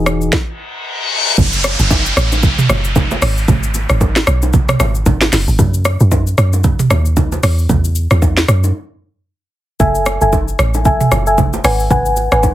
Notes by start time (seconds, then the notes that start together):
Already playing: E1 E3 D#4 F#4 G#4
0.06 cross-stick, shaker
0.21 shaker
0.33 kick, snare, reverse cymbal
1.38 F#1, kick, downlifter, low conga, shaker
1.53 shaker
1.64 cross-stick, low bongo, shaker
1.79 F#1, shaker
1.90 kick, high bongo, shaker
2.06 shaker
2.17 A1, cross-stick, shaker
2.32 high bongo, shaker
2.43 kick, low conga, shaker
2.58 mid tom, shaker
2.69 F#1, cross-stick, low bongo, shaker
2.84 shaker
2.96 kick, high bongo, low conga, shaker
3.11 low bongo, shaker
3.22 G#1, cross-stick, open hi-hat, shaker
3.37 shaker
3.48 G#1, kick, low conga, shaker
3.63 shaker
3.74 low bongo, shaker
3.90 G#1, cross-stick, shaker
4.01 kick, high bongo, shaker
4.16 snare, shaker
4.27 B1, cross-stick, shaker
4.42 high bongo, shaker
4.53 kick, low conga, shaker
4.69 cross-stick, mid tom, shaker
4.80 G#1, cross-stick, low bongo, shaker
4.95 shaker
5.06 G#1, kick, high bongo, low conga, shaker
5.21 snare, low bongo, shaker
5.33 F#1, snare, open hi-hat, shaker
5.48 G#1, shaker
5.59 F#2, kick, low conga, shaker
5.74 shaker
5.85 cross-stick, low bongo, shaker
6.00 F#2, shaker
6.11 kick, high bongo, shaker
6.27 shaker
6.38 F#2, cross-stick, shaker
6.53 high bongo, shaker
6.64 kick, low conga, shaker
6.79 mid tom, shaker
6.90 D#2, cross-stick, low bongo, shaker
7.05 shaker
7.17 kick, high bongo, low conga, shaker
7.32 low bongo, shaker
7.43 E2, cross-stick, open hi-hat, shaker
7.58 shaker
7.69 E2, kick, low conga, shaker
7.85 shaker
7.95 shaker
8.11 E2, cross-stick, low bongo, shaker
8.22 kick, high bongo, shaker
8.37 snare, shaker
8.48 F#2, cross-stick, shaker
8.64 high bongo, shaker
9.80 F#1 A4 E5 G#5, kick, low conga, shaker
9.95 shaker
10.06 cross-stick, low bongo, shaker
10.21 F#1 A4 E5 G#5, shaker
10.33 kick, high bongo, shaker
10.48 shaker
10.59 A1, cross-stick, shaker
10.74 high bongo, shaker
10.85 A4 E5 G#5, kick, low conga, shaker
11.01 mid tom, shaker
11.12 F#1, cross-stick, low bongo, shaker
11.27 A4 E5 G#5, shaker
11.38 kick, high bongo, low conga, shaker
11.53 low bongo, shaker
11.64 G#1 B4 F#5 G#5, cross-stick, open hi-hat, shaker
11.80 shaker
11.90 G#1 B4 F#5 G#5, kick, low conga, shaker
12.06 shaker
12.17 low bongo, shaker
12.32 G#1 B4 F#5 G#5, cross-stick, shaker
12.43 kick, high bongo, shaker